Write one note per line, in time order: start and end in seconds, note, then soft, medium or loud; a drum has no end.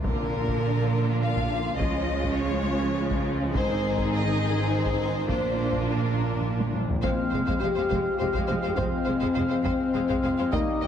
0.04 1.75 A#1 soft
0.04 0.88 A#2 medium
0.04 1.76 A#2 soft
0.04 1.75 D3 soft
0.04 3.51 F3 soft
0.04 1.75 A#3 soft
0.04 1.75 D4 soft
0.04 1.76 D4 soft
0.04 3.50 F4 soft
0.04 1.17 A#4 medium
0.04 taiko medium
0.48 taiko medium
1.22 1.80 F5 medium
1.36 taiko medium
1.77 3.54 C#2 medium
1.77 3.54 C#3 medium
1.77 3.50 F3 soft
1.77 3.50 G#3 medium
1.77 3.49 C#4 soft
1.77 2.35 D#5 medium
1.77 taiko medium
1.82 3.55 C#4 medium
2.23 taiko medium
2.37 3.25 C#5 medium
3.11 taiko medium
3.54 5.29 G#1 medium
3.54 5.29 G#2 medium
3.54 5.25 D#3 medium
3.54 5.26 D#3 medium
3.54 5.26 C4 medium
3.54 5.25 D#4 medium
3.54 5.25 G#4 medium
3.54 4.08 C5 medium
3.54 taiko medium
3.98 taiko medium
4.13 4.71 D#5 medium
4.70 5.29 C5 medium
4.85 taiko medium
5.28 6.83 A#1 medium
5.28 6.83 A#2 medium
5.28 6.76 F3 soft
5.28 6.80 A#3 soft
5.28 6.80 D4 soft
5.28 6.72 D4 soft
5.28 6.80 D4 soft
5.28 6.80 F4 soft
5.28 5.87 C5 medium
5.28 taiko medium
5.37 5.43 A#2 soft
5.44 5.50 A#2 soft
5.51 5.58 A#2 soft
5.59 5.64 A#2 soft
5.72 5.80 A#2 soft
5.72 taiko medium
5.81 5.88 A#2 soft
5.88 5.95 A#2 soft
5.88 6.75 A#4 soft
5.96 6.03 A#2 soft
6.04 6.11 A#2 soft
6.12 6.17 A#2 soft
6.18 6.24 A#2 soft
6.25 6.32 A#2 soft
6.33 6.39 A#2 soft
6.40 6.47 A#2 soft
6.49 6.55 A#2 soft
6.56 6.63 A#2 soft
6.60 taiko high medium
6.64 6.70 A#2 medium
6.72 6.77 A#2 medium
6.72 taiko high medium
6.79 6.85 A#2 medium
6.86 6.92 A#2 medium
6.86 taiko low medium
6.93 7.01 A#2 medium
7.02 7.09 F1 medium
7.02 7.09 F2 medium
7.02 7.23 F3 medium
7.02 7.10 G#3 medium
7.02 10.50 G#3 medium
7.02 7.23 C4 soft
7.02 7.58 C4 medium
7.02 10.50 F4 medium
7.02 7.08 C5 medium
7.02 10.50 C5 medium
7.02 7.09 F5 medium
7.02 10.50 F5 medium
7.02 taiko medium
7.30 7.39 F2 soft
7.30 7.39 G#3 soft
7.30 7.36 C5 soft
7.30 7.39 F5 soft
7.34 7.40 F1 soft
7.46 7.53 F2 medium
7.46 7.55 G#3 soft
7.46 7.52 C5 medium
7.46 7.53 F5 medium
7.46 taiko medium
7.59 7.68 F1 soft
7.59 7.67 F2 soft
7.59 8.17 G4 medium
7.59 7.66 C5 soft
7.59 7.68 F5 soft
7.64 7.70 G#3 soft
7.75 7.82 F2 soft
7.75 7.81 C5 soft
7.75 7.84 F5 soft
7.79 7.84 G#3 soft
7.89 7.97 F1 medium
7.89 7.97 F2 medium
7.89 7.95 C5 medium
7.89 7.96 F5 soft
7.89 taiko medium
7.94 7.99 G#3 medium
8.18 8.26 F1 soft
8.18 8.26 F2 soft
8.18 8.27 G#3 soft
8.18 8.38 G4 medium
8.18 8.24 C5 soft
8.18 8.26 F5 soft
8.32 8.41 F2 medium
8.32 8.39 C5 medium
8.32 8.40 F5 medium
8.32 taiko medium
8.36 8.42 G#3 medium
8.36 8.56 G4 medium
8.47 8.54 F1 soft
8.47 8.56 F2 soft
8.47 8.56 G#3 soft
8.47 8.53 C5 soft
8.47 8.54 F5 soft
8.57 8.77 G4 medium
8.62 8.71 F2 soft
8.62 8.71 G#3 soft
8.62 8.68 C5 medium
8.62 8.69 F5 medium
8.76 8.83 F1 medium
8.76 8.85 F2 medium
8.76 8.98 F3 medium
8.76 8.85 G#3 medium
8.76 10.52 C4 medium
8.76 8.98 C4 medium
8.76 8.83 C5 medium
8.76 8.83 F5 medium
8.76 taiko medium
9.04 9.13 F1 soft
9.04 9.13 G#3 soft
9.04 9.12 C5 soft
9.04 9.11 F5 soft
9.08 9.14 F2 soft
9.20 9.29 F2 medium
9.20 9.28 G#3 medium
9.20 9.27 C5 medium
9.20 9.26 F5 medium
9.20 taiko medium
9.35 9.42 F1 soft
9.35 9.43 G#3 soft
9.35 9.41 C5 soft
9.35 9.41 F5 soft
9.39 9.44 F2 soft
9.49 9.57 F2 soft
9.49 9.56 G#3 soft
9.49 9.55 C5 medium
9.49 9.57 F5 soft
9.64 9.70 F1 medium
9.64 9.72 F2 medium
9.64 9.70 G#3 medium
9.64 9.71 C5 medium
9.64 9.71 F5 medium
9.64 taiko medium
9.94 10.00 F1 soft
9.94 10.01 F2 soft
9.94 10.00 G#3 medium
9.94 10.00 C5 soft
9.94 10.02 F5 soft
10.09 10.16 F2 medium
10.09 10.15 G#3 medium
10.09 10.15 C5 medium
10.09 10.16 F5 medium
10.09 taiko medium
10.23 10.29 F1 soft
10.23 10.31 F2 soft
10.23 10.29 G#3 soft
10.23 10.29 C5 medium
10.23 10.30 F5 soft
10.37 10.45 F2 soft
10.37 10.44 G#3 medium
10.37 10.45 C5 medium
10.37 10.43 F5 medium
10.52 10.58 D#2 medium
10.52 10.60 D#2 medium
10.52 10.73 G3 medium
10.52 10.87 G3 medium
10.52 10.58 A#3 medium
10.52 10.73 A#3 medium
10.52 10.87 D#4 medium
10.52 10.87 G4 medium
10.52 10.87 A#4 medium
10.52 10.87 D#5 medium
10.52 10.58 D#5 medium
10.52 10.58 G5 medium
10.52 taiko medium
10.81 10.87 D#2 soft
10.81 10.87 A#3 medium
10.81 10.87 D#5 medium
10.81 10.87 G5 soft